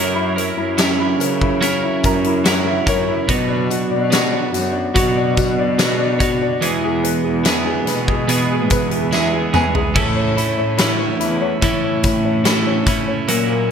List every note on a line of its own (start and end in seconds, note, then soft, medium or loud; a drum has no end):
0.00 0.54 F#2 loud
0.00 0.37 F#3 medium
0.00 3.24 F#3 medium
0.00 0.37 C#4 medium
0.00 0.37 E4 medium
0.00 0.35 A#4 medium
0.14 0.56 E4 soft
0.36 0.78 C#4 soft
0.36 0.79 E4 medium
0.36 0.78 A#4 medium
0.36 1.19 A#4 medium
0.36 closed hi-hat medium
0.57 1.16 F#2 medium
0.57 0.98 E4 soft
0.78 1.60 F#3 medium
0.78 1.62 C#4 medium
0.78 1.61 C#4 medium
0.78 1.61 E4 medium
0.78 1.62 A#4 medium
0.78 snare loud
0.78 closed hi-hat loud
0.78 tambourine medium
1.00 1.41 E4 soft
1.20 2.00 C#3 medium
1.20 2.04 A#4 medium
1.20 closed hi-hat medium
1.20 tambourine soft
1.41 1.82 E4 medium
1.41 kick medium
1.61 2.44 F#3 medium
1.61 2.45 C#4 loud
1.61 2.46 C#4 medium
1.61 2.45 E4 medium
1.61 2.46 A#4 medium
1.61 closed hi-hat medium
1.61 tambourine soft
1.83 2.25 E4 medium
2.04 2.83 F#2 loud
2.04 2.87 A#4 medium
2.04 2.43 A#5 medium
2.04 kick medium
2.04 closed hi-hat medium
2.04 tambourine soft
2.24 2.65 E4 medium
2.24 closed hi-hat soft
2.44 2.87 F#3 medium
2.44 2.87 C#4 medium
2.44 3.27 C#4 soft
2.44 2.87 E4 medium
2.44 2.85 A#4 medium
2.44 2.66 F#5 medium
2.44 snare loud
2.44 closed hi-hat medium
2.44 tambourine medium
2.67 3.07 E4 soft
2.67 2.86 E5 medium
2.86 3.26 F#2 medium
2.86 3.29 C#4 medium
2.86 3.29 E4 medium
2.86 3.28 A#4 medium
2.86 3.26 C#5 medium
2.86 kick medium
2.86 closed hi-hat medium
2.86 tambourine soft
3.08 3.28 E4 medium
3.28 4.12 B2 medium
3.28 3.87 B2 loud
3.28 4.12 F#3 medium
3.28 6.58 B3 medium
3.28 4.10 B3 medium
3.28 4.11 D4 medium
3.28 4.12 F#4 medium
3.28 4.13 C#5 medium
3.28 kick loud
3.28 closed hi-hat medium
3.28 tambourine soft
3.49 3.89 D5 soft
3.70 4.10 F#4 medium
3.70 closed hi-hat medium
3.70 tambourine soft
3.91 4.50 B2 loud
3.91 4.31 D5 medium
4.10 4.95 B3 medium
4.10 4.95 D4 medium
4.10 4.52 F#4 medium
4.10 4.95 F#4 medium
4.10 4.96 C#5 medium
4.10 snare loud
4.10 closed hi-hat medium
4.10 tambourine medium
4.32 4.71 D5 soft
4.53 4.92 F#2 medium
4.53 4.93 F#4 medium
4.53 closed hi-hat medium
4.53 tambourine soft
4.73 5.15 D5 soft
4.94 5.78 B2 medium
4.94 6.58 B2 loud
4.94 5.79 F#3 medium
4.94 5.78 B3 medium
4.94 5.78 D4 medium
4.94 5.36 F#4 medium
4.94 5.79 F#4 loud
4.94 5.80 C#5 loud
4.94 kick medium
4.94 closed hi-hat medium
4.94 tambourine soft
5.16 5.57 D5 medium
5.37 5.76 F#4 medium
5.37 kick medium
5.37 closed hi-hat medium
5.37 tambourine soft
5.58 5.98 D5 medium
5.78 6.20 B3 medium
5.78 6.20 D4 medium
5.78 6.18 F#4 medium
5.78 6.19 F#4 medium
5.78 6.18 C#5 medium
5.78 snare loud
5.78 closed hi-hat medium
5.78 tambourine medium
6.00 6.40 D5 medium
6.19 6.61 B3 soft
6.19 6.62 D4 medium
6.19 6.61 F#4 medium
6.19 6.62 F#4 medium
6.19 6.62 C#5 medium
6.19 kick medium
6.19 closed hi-hat medium
6.19 tambourine soft
6.41 6.62 D5 medium
6.61 7.45 E2 medium
6.61 7.21 E2 medium
6.61 7.45 B2 medium
6.61 9.91 E3 medium
6.61 7.43 E3 medium
6.61 7.44 G#3 medium
6.61 7.45 B3 medium
6.61 7.46 G#4 medium
6.61 closed hi-hat medium
6.61 tambourine soft
6.83 7.22 G#4 soft
7.03 7.86 B4 medium
7.03 closed hi-hat medium
7.24 7.83 E2 medium
7.24 7.64 G#4 soft
7.44 8.28 E3 medium
7.44 8.28 G#3 medium
7.44 8.27 B3 soft
7.44 8.28 B3 medium
7.44 8.29 G#4 medium
7.44 snare medium
7.44 closed hi-hat medium
7.44 tambourine medium
7.65 8.07 G#4 soft
7.87 8.70 B2 medium
7.87 8.70 B4 medium
7.87 snare soft
7.87 closed hi-hat medium
7.87 tambourine soft
8.08 8.49 G#4 soft
8.08 kick medium
8.28 9.12 E2 medium
8.28 9.12 B2 medium
8.28 9.11 E3 medium
8.28 9.11 G#3 medium
8.28 9.11 B3 medium
8.28 9.13 B3 medium
8.28 9.13 G#4 medium
8.28 closed hi-hat medium
8.28 tambourine soft
8.50 8.90 G#4 soft
8.70 9.50 E2 medium
8.70 9.53 B4 medium
8.70 kick medium
8.70 closed hi-hat medium
8.70 tambourine medium
8.91 9.31 G#4 medium
8.91 closed hi-hat soft
9.11 9.53 E3 medium
9.11 9.54 G#3 medium
9.11 9.93 B3 soft
9.11 9.53 B3 medium
9.11 9.52 G#4 medium
9.11 9.51 E5 medium
9.11 snare medium
9.11 tambourine medium
9.33 9.73 G#4 soft
9.53 9.93 E2 medium
9.53 9.94 E3 soft
9.53 9.95 G#3 medium
9.53 9.96 B3 medium
9.53 9.95 G#4 medium
9.53 9.95 B4 medium
9.53 9.93 G#5 medium
9.53 mid tom medium
9.53 tambourine soft
9.74 9.95 G#4 medium
9.74 floor tom medium
9.94 10.37 A2 medium
9.94 10.54 A2 medium
9.94 10.37 E3 medium
9.94 10.37 A3 medium
9.94 13.25 A3 medium
9.94 10.36 C#4 medium
9.94 10.35 E4 medium
9.94 kick medium
9.94 crash medium
10.16 10.56 C#5 soft
10.36 10.79 A3 soft
10.36 10.79 C#4 soft
10.36 10.78 E4 soft
10.36 10.76 E4 medium
10.36 closed hi-hat medium
10.36 tambourine soft
10.58 11.16 A2 medium
10.58 10.97 C#5 soft
10.78 11.62 E3 medium
10.78 11.62 A3 medium
10.78 11.63 C#4 medium
10.78 11.18 E4 medium
10.78 11.64 E4 medium
10.78 snare loud
10.78 closed hi-hat loud
10.78 tambourine medium
10.99 11.39 C#5 soft
11.20 11.59 E2 loud
11.20 11.61 E4 medium
11.20 closed hi-hat medium
11.20 tambourine soft
11.41 11.83 C#5 medium
11.62 12.45 A2 medium
11.62 13.25 A2 medium
11.62 12.44 E3 medium
11.62 12.44 A3 medium
11.62 12.46 C#4 medium
11.62 12.04 E4 medium
11.62 12.47 E4 medium
11.62 kick medium
11.62 closed hi-hat medium
11.62 tambourine soft
11.84 12.23 C#5 soft
12.03 12.45 E4 medium
12.03 kick medium
12.03 closed hi-hat medium
12.03 tambourine soft
12.25 12.65 C#5 medium
12.44 12.87 E3 medium
12.44 12.87 A3 medium
12.44 12.87 C#4 medium
12.44 12.86 E4 soft
12.44 12.85 E4 medium
12.44 snare loud
12.44 closed hi-hat medium
12.44 tambourine medium
12.67 13.06 C#5 soft
12.86 13.29 A3 soft
12.86 13.28 C#4 medium
12.86 13.28 E4 medium
12.86 kick medium
12.86 closed hi-hat medium
12.86 tambourine soft
13.08 13.28 C#5 medium
13.28 13.71 A#2 medium
13.28 13.71 F#3 medium
13.28 13.71 A#3 medium
13.28 13.71 C#4 medium
13.28 13.71 E4 medium
13.28 closed hi-hat medium
13.49 13.71 A#4 soft